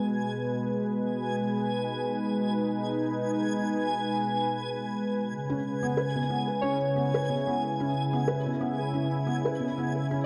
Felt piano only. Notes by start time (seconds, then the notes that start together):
5.50 C#4
5.83 B3
5.97 B4
6.15 B2
6.30 B3
6.63 C#4
6.96 B3
7.14 B4
7.29 B2
7.47 B3
7.80 C#4
8.13 B3
8.28 B4
8.46 B2
8.61 B3
8.94 C#4
9.27 B3
9.45 B4
9.60 B2
9.78 B3
10.11 C#4